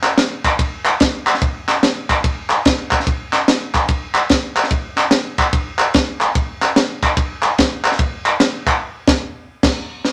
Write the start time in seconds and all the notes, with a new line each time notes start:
0.02 snare, clap, ride bell
0.18 snare, ride bell
0.44 kick, clap, ride bell
0.59 kick, ride bell
0.86 clap, ride bell
1.00 kick, snare, ride bell
1.27 clap, ride bell
1.34 snare
1.42 kick, ride bell
1.68 snare, clap, ride bell
1.83 snare, ride bell
2.10 kick, clap, ride bell
2.24 kick, ride bell
2.50 clap, ride bell
2.65 kick, snare, ride bell
2.91 kick, clap, ride bell
3.00 snare
3.07 kick, ride bell
3.33 snare, clap, ride bell
3.48 snare, ride bell
3.74 kick, clap, ride bell
3.89 kick, ride bell
4.15 clap, ride bell
4.29 kick, snare, ride bell
4.56 clap, ride bell
4.63 snare
4.71 kick, ride bell
4.96 snare, clap, ride bell
5.11 snare, ride bell
5.38 kick, clap, ride bell
5.53 kick, ride bell
5.79 clap, ride bell
5.94 kick, snare, ride bell
6.21 clap, ride bell
6.35 kick, ride bell
6.61 snare, clap, ride bell
6.76 snare, ride bell
7.03 kick, clap, ride bell
7.17 kick, ride bell
7.43 clap, ride bell
7.58 kick, snare, ride bell
7.85 clap, ride bell
7.92 snare
7.99 kick, ride bell
8.25 clap, ride bell
8.40 snare, ride bell
8.67 kick, clap, ride bell
9.07 kick, snare, crash
9.63 kick, snare, crash
10.05 snare